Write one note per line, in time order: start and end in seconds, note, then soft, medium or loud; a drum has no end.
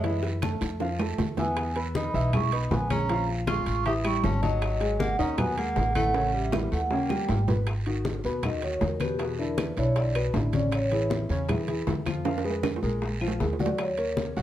0.00 0.55 F#2 medium
0.00 0.35 E3 medium
0.00 0.20 G#3 medium
0.00 0.21 E5 medium
0.00 high bongo medium
0.00 high timbale medium
0.00 long guiro medium
0.04 0.35 E4 medium
0.04 0.36 E5 medium
0.23 high bongo medium
0.23 high conga soft
0.42 0.74 A3 medium
0.42 0.74 A4 medium
0.42 0.74 A5 medium
0.42 high conga medium
0.42 high timbale medium
0.42 low timbale medium
0.42 short guiro medium
0.42 claves medium
0.61 1.15 F2 medium
0.61 low bongo medium
0.61 high timbale medium
0.61 short guiro medium
0.80 0.96 F3 medium
0.80 0.96 F4 medium
0.80 0.97 F5 medium
0.80 low bongo medium
0.80 high conga soft
0.80 high timbale medium
0.80 long guiro medium
0.99 1.31 A3 medium
0.99 1.31 A4 medium
0.99 1.31 A5 medium
0.99 low bongo medium
0.99 high conga soft
0.99 low timbale medium
0.99 claves medium
1.18 2.08 E2 medium
1.18 high conga medium
1.18 low timbale loud
1.18 short guiro medium
1.37 1.74 B3 medium
1.37 1.69 E4 medium
1.37 1.70 E5 medium
1.37 1.74 G#5 loud
1.37 1.70 E6 medium
1.37 low bongo medium
1.37 high conga medium
1.37 low timbale medium
1.37 short guiro medium
1.57 high bongo medium
1.57 high conga soft
1.57 high timbale loud
1.57 long guiro medium
1.57 claves medium
1.76 2.07 B3 medium
1.76 2.07 B4 medium
1.76 2.08 B5 medium
1.76 high bongo soft
1.76 high conga soft
1.76 high timbale medium
1.95 2.31 D#4 medium
1.95 2.31 B5 medium
1.95 high bongo medium
1.95 high conga medium
1.95 low timbale medium
1.95 short guiro medium
2.14 2.67 B1 medium
2.14 2.29 E3 medium
2.14 2.30 E4 medium
2.14 2.30 E5 medium
2.14 high bongo soft
2.14 high conga soft
2.14 short guiro medium
2.33 2.49 G#3 medium
2.33 2.51 E4 medium
2.33 2.49 G#4 medium
2.33 2.49 G#5 medium
2.33 2.54 C#6 medium
2.33 high bongo medium
2.33 high conga soft
2.33 low conga medium
2.33 high timbale medium
2.33 long guiro medium
2.33 claves medium
2.52 2.84 B3 medium
2.52 2.70 D#4 medium
2.52 2.84 B4 medium
2.52 2.84 B5 medium
2.52 2.71 B5 medium
2.52 high bongo soft
2.52 high conga soft
2.52 high timbale medium
2.71 3.61 A#1 medium
2.71 2.89 B3 medium
2.71 2.92 G#5 medium
2.71 high bongo medium
2.71 low bongo medium
2.71 high conga medium
2.71 low timbale medium
2.71 short guiro medium
2.90 3.06 G#3 medium
2.90 3.26 C#4 medium
2.90 3.06 G#4 medium
2.90 3.06 G#5 medium
2.90 3.27 A#5 loud
2.90 high conga medium
2.90 high timbale loud
2.90 short guiro medium
2.90 claves medium
3.09 3.41 F3 medium
3.09 3.41 F4 medium
3.09 3.41 F5 medium
3.09 high bongo medium
3.09 high conga soft
3.09 high timbale medium
3.09 long guiro medium
3.28 high bongo soft
3.28 high conga soft
3.47 3.79 G#3 medium
3.47 3.83 F4 medium
3.47 3.79 G#4 medium
3.47 3.79 G#5 medium
3.47 3.88 C#6 medium
3.47 high bongo medium
3.47 high conga medium
3.47 high timbale medium
3.47 low timbale medium
3.47 short guiro medium
3.47 claves medium
3.66 4.20 A1 medium
3.66 high timbale medium
3.66 short guiro medium
3.86 4.01 E3 medium
3.86 4.02 E4 medium
3.86 3.94 G4 medium
3.86 4.02 E5 medium
3.86 3.96 D#6 loud
3.86 high bongo medium
3.86 high conga soft
3.86 high timbale medium
3.86 long guiro medium
4.05 4.36 G3 medium
4.05 4.22 E4 medium
4.05 4.36 G4 medium
4.05 4.36 G5 medium
4.05 4.25 C#6 loud
4.05 high bongo soft
4.05 high conga soft
4.05 high timbale medium
4.05 claves medium
4.24 5.13 G#1 medium
4.24 4.42 C#4 medium
4.24 4.44 A5 medium
4.24 high bongo medium
4.24 low bongo medium
4.24 high conga medium
4.24 low timbale medium
4.24 short guiro medium
4.42 4.96 F#3 medium
4.42 4.74 D#4 medium
4.42 4.74 D#5 medium
4.42 5.03 D#5 loud
4.42 4.74 D#6 medium
4.42 high bongo soft
4.42 high conga medium
4.42 high timbale medium
4.42 short guiro medium
4.62 high bongo medium
4.62 high conga soft
4.62 high timbale medium
4.62 long guiro medium
4.62 claves medium
4.80 5.12 G#3 medium
4.80 5.12 G#4 medium
4.80 5.12 G#5 medium
4.80 high bongo soft
4.80 high conga soft
4.80 high timbale medium
4.99 5.17 A#3 medium
4.99 5.20 F#5 medium
4.99 high bongo medium
4.99 high conga loud
4.99 low timbale medium
4.99 short guiro medium
5.19 5.72 D#2 medium
5.19 5.35 D#3 medium
5.19 5.37 C#4 medium
5.19 5.35 D#4 medium
5.19 5.35 D#5 medium
5.19 5.40 A#5 medium
5.19 high bongo soft
5.19 high conga soft
5.19 short guiro medium
5.38 5.54 F#3 medium
5.38 5.56 B3 medium
5.38 5.54 F#4 medium
5.38 5.54 F#5 medium
5.38 5.57 G#5 medium
5.38 high bongo medium
5.38 high conga soft
5.38 low conga loud
5.38 high timbale loud
5.38 long guiro medium
5.38 claves medium
5.57 5.88 G#3 medium
5.57 5.93 A#3 medium
5.57 5.88 G#4 medium
5.57 5.96 F#5 medium
5.57 5.88 G#5 medium
5.57 high bongo soft
5.57 high conga soft
5.57 high timbale medium
5.76 6.66 A1 medium
5.76 high bongo medium
5.76 low bongo medium
5.76 high conga medium
5.76 low timbale medium
5.76 short guiro medium
5.95 6.11 E3 medium
5.95 6.31 A3 medium
5.95 6.11 E4 medium
5.95 6.11 E5 medium
5.95 6.36 F#5 loud
5.95 high conga medium
5.95 high timbale medium
5.95 short guiro medium
5.95 claves medium
6.14 6.46 C#3 medium
6.14 6.46 C#4 medium
6.14 6.46 C#5 medium
6.14 high bongo medium
6.14 high conga soft
6.14 high timbale loud
6.14 long guiro medium
6.34 6.69 G3 medium
6.34 6.70 E5 medium
6.34 high bongo soft
6.34 high conga soft
6.52 6.84 E3 medium
6.52 6.84 E4 medium
6.52 6.84 E5 medium
6.52 high bongo medium
6.52 high conga medium
6.52 low timbale loud
6.52 short guiro medium
6.52 claves medium
6.71 7.25 D#2 medium
6.71 6.83 A3 medium
6.71 6.84 F#5 medium
6.71 short guiro medium
6.83 6.90 A3 soft
6.83 6.92 F#5 medium
6.90 7.07 C#3 medium
6.90 7.44 A#3 medium
6.90 7.07 C#4 medium
6.90 7.07 C#5 medium
6.90 7.45 G5 medium
6.90 high bongo medium
6.90 high conga soft
6.90 low timbale medium
6.90 long guiro medium
7.09 7.41 G3 medium
7.09 7.41 G4 medium
7.09 7.42 G5 medium
7.09 high bongo soft
7.09 high conga medium
7.09 low timbale medium
7.09 claves medium
7.29 8.18 G#1 medium
7.29 high bongo medium
7.29 low bongo medium
7.29 low timbale medium
7.29 short guiro medium
7.48 7.64 B3 medium
7.48 7.64 B4 medium
7.48 7.64 B5 medium
7.48 high bongo soft
7.48 low conga medium
7.48 low timbale medium
7.48 short guiro medium
7.67 high bongo medium
7.67 high conga soft
7.67 high timbale medium
7.67 long guiro medium
7.67 claves medium
7.86 8.17 D#3 medium
7.86 8.18 D#4 medium
7.86 8.18 F#4 medium
7.86 high bongo soft
7.86 high conga soft
7.86 high timbale medium
8.05 high bongo medium
8.05 high conga medium
8.05 low timbale medium
8.05 short guiro medium
8.24 8.78 D#2 medium
8.24 8.40 B2 medium
8.24 8.40 B3 medium
8.24 8.40 B4 medium
8.24 high bongo soft
8.24 high conga soft
8.24 short guiro medium
8.43 8.59 D#3 medium
8.43 8.60 D#4 medium
8.43 8.60 F#4 medium
8.43 8.63 D#5 medium
8.43 high bongo medium
8.43 high conga soft
8.43 low conga medium
8.43 high timbale medium
8.43 long guiro medium
8.43 claves medium
8.62 8.94 D#3 medium
8.62 8.94 D#4 medium
8.62 8.95 F#4 medium
8.62 8.81 C#5 medium
8.62 high bongo soft
8.62 high conga soft
8.62 high timbale medium
8.81 9.71 E2 medium
8.81 9.01 A#4 medium
8.81 high bongo medium
8.81 low bongo medium
8.81 high conga medium
8.81 low timbale medium
8.81 short guiro medium
9.00 9.16 B2 medium
9.00 9.16 B3 medium
9.00 9.19 G4 medium
9.00 9.17 B4 medium
9.00 high conga medium
9.00 high timbale medium
9.00 short guiro medium
9.00 claves medium
9.19 9.35 B2 medium
9.19 9.36 B3 medium
9.19 9.39 G#4 medium
9.19 9.36 B4 medium
9.19 high bongo medium
9.19 high conga soft
9.19 high timbale medium
9.19 long guiro medium
9.38 9.70 D3 medium
9.38 9.70 D4 medium
9.38 9.71 E4 medium
9.38 9.57 A#4 medium
9.38 high bongo soft
9.38 high conga soft
9.58 9.76 B4 medium
9.58 high bongo medium
9.58 high conga medium
9.58 high timbale medium
9.58 low timbale medium
9.58 short guiro medium
9.58 claves medium
9.77 10.30 B1 medium
9.77 10.09 D3 medium
9.77 10.09 D4 medium
9.77 10.09 E4 medium
9.77 9.96 C#5 medium
9.77 high timbale medium
9.77 short guiro medium
9.96 10.08 D5 medium
9.96 high bongo medium
9.96 high conga soft
9.96 high timbale medium
9.96 long guiro medium
10.15 10.31 B2 medium
10.15 10.31 B3 medium
10.15 10.31 B4 medium
10.15 high bongo soft
10.15 high conga soft
10.15 high timbale medium
10.15 claves medium
10.34 11.24 A1 medium
10.34 10.50 D3 medium
10.34 10.50 D4 medium
10.34 10.50 E4 medium
10.34 high bongo medium
10.34 low bongo medium
10.34 high conga medium
10.34 low timbale medium
10.34 short guiro medium
10.53 10.85 C#3 medium
10.53 10.85 C#4 medium
10.53 10.85 C#5 medium
10.53 10.73 D5 medium
10.53 high bongo soft
10.53 high conga medium
10.53 high timbale medium
10.53 short guiro medium
10.72 11.09 C#5 medium
10.72 high bongo medium
10.72 high conga soft
10.72 high timbale loud
10.72 long guiro medium
10.72 claves medium
10.91 11.23 E3 medium
10.91 11.23 E4 medium
10.91 11.23 G#4 medium
10.91 high bongo soft
10.91 high conga soft
10.91 high timbale medium
11.10 high bongo medium
11.10 high conga medium
11.10 low timbale medium
11.10 short guiro medium
11.29 11.83 E2 medium
11.29 11.46 C#3 medium
11.29 11.46 C#4 medium
11.29 11.46 C#5 medium
11.29 high bongo soft
11.29 high conga soft
11.29 short guiro medium
11.48 11.64 E3 medium
11.48 11.65 E4 medium
11.48 11.65 G#4 medium
11.48 high bongo medium
11.48 high conga soft
11.48 low conga medium
11.48 high timbale medium
11.48 long guiro medium
11.48 claves medium
11.68 11.99 E3 medium
11.68 11.99 E4 medium
11.68 12.00 G#4 medium
11.68 high bongo soft
11.68 high conga soft
11.68 high timbale medium
11.87 12.77 F2 medium
11.87 high bongo medium
11.87 low bongo medium
11.87 high conga medium
11.87 low timbale medium
11.87 short guiro medium
12.06 12.22 F3 medium
12.06 12.22 F4 medium
12.06 12.22 F5 medium
12.06 high conga medium
12.06 high timbale medium
12.06 short guiro medium
12.06 claves medium
12.25 12.41 F3 medium
12.25 12.41 F4 medium
12.25 12.42 F5 medium
12.25 high bongo medium
12.25 high conga soft
12.25 high timbale medium
12.25 long guiro medium
12.38 high timbale medium
12.45 12.76 G#3 medium
12.45 12.76 G#4 medium
12.45 12.76 B4 medium
12.45 high bongo soft
12.45 high conga soft
12.51 high timbale medium
12.63 high bongo medium
12.63 high conga loud
12.63 high timbale medium
12.63 short guiro medium
12.63 claves medium
12.76 low timbale medium
12.82 13.36 A#1 medium
12.82 13.14 G#3 medium
12.82 13.15 G#4 medium
12.82 13.15 A#4 medium
12.82 short guiro medium
13.02 high bongo medium
13.02 high conga soft
13.02 low timbale medium
13.02 long guiro medium
13.21 13.37 F3 medium
13.21 13.37 F4 medium
13.21 13.37 F5 medium
13.21 high bongo soft
13.21 high conga soft
13.21 claves medium
13.28 low timbale loud
13.40 14.30 D#2 medium
13.40 13.56 G#3 medium
13.40 13.56 G#4 medium
13.40 13.56 A#4 medium
13.40 high bongo medium
13.40 low bongo medium
13.40 high conga medium
13.40 short guiro medium
13.53 low timbale medium
13.59 13.91 F#3 medium
13.59 13.91 F#4 medium
13.59 13.79 D5 loud
13.59 13.91 F#5 medium
13.59 high bongo soft
13.59 high conga medium
13.59 short guiro medium
13.66 low timbale loud
13.78 14.16 C#5 medium
13.78 high bongo medium
13.78 high conga soft
13.78 high timbale loud
13.78 long guiro medium
13.78 claves medium
13.98 14.29 A#3 medium
13.98 14.30 A#4 medium
13.98 14.30 C#5 medium
13.98 high bongo soft
13.98 high conga soft
13.98 high timbale medium
14.17 high bongo medium
14.17 high conga medium
14.17 low timbale medium
14.17 short guiro medium
14.36 14.42 A#1 medium
14.36 14.42 F#3 medium
14.36 14.42 F#4 medium
14.36 14.42 F#5 medium
14.36 high bongo soft
14.36 high conga soft
14.36 short guiro medium